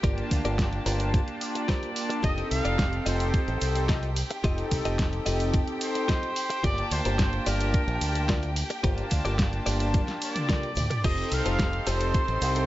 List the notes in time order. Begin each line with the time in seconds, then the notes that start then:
Already playing: G4 G5
0.03 G1 A#3 D4 F4 G4 A#4 D5 A5, kick, closed hi-hat, shaker
0.18 closed hi-hat
0.31 D2, kick, open hi-hat, shaker
0.45 G1 F4 G4 A#4 D5, closed hi-hat, shaker
0.59 kick, snare, closed hi-hat, shaker
0.73 closed hi-hat
0.86 G1 F4 G4 A#4 C5, open hi-hat, shaker
1.00 closed hi-hat, shaker
1.14 kick, closed hi-hat, shaker
1.28 closed hi-hat
1.41 D5, open hi-hat, shaker
1.55 muted clean electric guitar stroke, closed hi-hat, shaker
1.68 F4 G4 A#4 C5, kick, snare, closed hi-hat, shaker
1.82 A#3 D4 F4 A5, closed hi-hat
1.96 open hi-hat, shaker
2.09 muted clean electric guitar stroke, closed hi-hat, shaker
2.22 F1 C4 D#4 F4 G4 A4 D#5 G5, kick, closed hi-hat, ride, shaker
2.38 closed hi-hat
2.51 C2 F5, open hi-hat, ride, shaker
2.64 F1 F4 G4 A4 D5, closed hi-hat, shaker
2.79 kick, snare, closed hi-hat, ride, shaker
2.93 closed hi-hat
3.06 F1 F4 G4 A4 C5 D#5, open hi-hat, ride, shaker
3.20 closed hi-hat, shaker
3.34 muted fingered electric bass stroke, kick, closed hi-hat, ride, shaker
3.48 A1, closed hi-hat
3.61 C2, open hi-hat, ride, shaker
3.75 muted clean electric guitar stroke, closed hi-hat, shaker
3.88 C4 D#4 F4 G4 A4 D#5, kick, snare, closed hi-hat, ride, shaker
4.03 closed hi-hat
4.16 open hi-hat, ride, shaker
4.30 muted clean electric guitar stroke, closed hi-hat, shaker
4.43 F1 C4 D#4 F4 G4 A4 D#5, kick, closed hi-hat, ride, shaker
4.58 closed hi-hat
4.71 C2, kick, open hi-hat, ride, shaker
4.85 F1 F4 G4 A4 D#5, closed hi-hat, shaker
4.99 kick, snare, closed hi-hat, ride, shaker
5.13 closed hi-hat
5.26 F1 F4 G4 A4 D#5, open hi-hat, ride, shaker
5.40 closed hi-hat, shaker
5.54 kick, closed hi-hat, ride, shaker
5.68 closed hi-hat
5.81 C5, open hi-hat, ride, shaker
5.95 muted clean electric guitar stroke, closed hi-hat, shaker
6.08 C4 D#4 F4 G4 A4 D#5, kick, snare, closed hi-hat, ride, shaker
6.23 closed hi-hat
6.36 open hi-hat, ride, shaker
6.50 muted clean electric guitar stroke, closed hi-hat, shaker
6.63 G1 A#3 D4 F4 G4 A#4 D5 A5, kick, closed hi-hat, ride, shaker
6.78 closed hi-hat
6.91 D2 C5, open hi-hat, ride, shaker
7.05 G1 F4 G4 A#4 C5, closed hi-hat, shaker
7.18 kick, snare, closed hi-hat, ride, shaker
7.33 closed hi-hat
7.46 G1 F4 G4 A#4 D5, open hi-hat, ride, shaker
7.60 closed hi-hat, shaker
7.74 kick, closed hi-hat, ride, shaker
7.88 A#1, closed hi-hat
8.01 D2, open hi-hat, ride, shaker
8.15 muted clean electric guitar stroke, closed hi-hat, shaker
8.28 A#3 D4 F4 G4 A4 A#4 D5, kick, snare, closed hi-hat, ride, shaker
8.43 closed hi-hat
8.56 open hi-hat, ride, shaker
8.70 muted clean electric guitar stroke, closed hi-hat, shaker
8.83 G1 A#3 D4 F4 G4 A#4 C5 A5, kick, closed hi-hat, ride, shaker
8.98 closed hi-hat
9.11 D2, kick, open hi-hat, ride, shaker
9.25 G1 F4 G4 A#4 D5, closed hi-hat, shaker
9.39 kick, snare, closed hi-hat, ride, shaker
9.53 closed hi-hat
9.66 G1 F4 G4 A#4 D5, open hi-hat, ride, shaker
9.80 closed hi-hat, shaker
9.94 kick, closed hi-hat, high tom, ride, shaker
10.08 snare, closed hi-hat
10.22 D5, open hi-hat, ride, shaker
10.35 muted clean electric guitar stroke, closed hi-hat, mid tom, shaker
10.49 A#3 D4 F4 G4 A4 A#4 D5, kick, snare, closed hi-hat, mid tom, ride, shaker
10.63 closed hi-hat
10.75 D2, mid tom, open hi-hat, ride, shaker
10.90 muted clean electric guitar stroke, closed hi-hat, mid tom, shaker
11.04 F1 C4 D#4 F4 G4 A4 C5 D#5 C6, kick, closed hi-hat, crash, ride, shaker
11.18 closed hi-hat
11.32 C2 F5, open hi-hat, ride, shaker
11.45 F1 F4 G4 A4 C5, closed hi-hat, shaker
11.59 kick, snare, closed hi-hat, ride, shaker
11.73 closed hi-hat
11.86 F1 F4 G4 A4 C5, open hi-hat, ride, shaker
12.00 closed hi-hat, shaker
12.14 kick, closed hi-hat, ride, shaker
12.28 A1, closed hi-hat
12.41 C2, open hi-hat, ride, shaker
12.55 muted clean electric guitar stroke, closed hi-hat, shaker